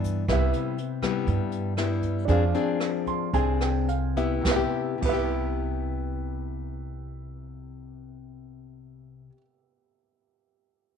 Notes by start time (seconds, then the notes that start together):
Already playing: G2 E3 B3 D4 E4 B4 D5
0.04 kick, closed hi-hat, shaker
0.28 C2 C3 G3 B3 E4 G4 B4, kick, cross-stick, closed hi-hat
0.32 E5
0.53 closed hi-hat
0.78 closed hi-hat
1.02 G3 B3 E4, kick, cross-stick, closed hi-hat
1.27 G2, kick, closed hi-hat
1.52 closed hi-hat
1.77 G3 B3 E4, cross-stick, closed hi-hat
2.02 kick, closed hi-hat
2.25 F2 D4 G#4, kick, closed hi-hat
2.29 F3 C4 D4 G#4 C5 F5
2.54 C4 D4 G#4, closed hi-hat
2.80 cross-stick, closed hi-hat
3.07 C6, kick, closed hi-hat
3.33 C2 C3 C4 D4 G#4 G#5, kick, closed hi-hat
3.61 G5, cross-stick, closed hi-hat
3.88 F5, closed hi-hat
4.16 B3 E4 G4 E5, kick, closed hi-hat
4.41 C2 C3 G4, kick, snare
4.47 B3 B4
4.51 E4 E5
4.56 G4
4.98 C3 G4
5.02 C2 B3 B4, kick, crash
5.09 E4 E5
5.13 G4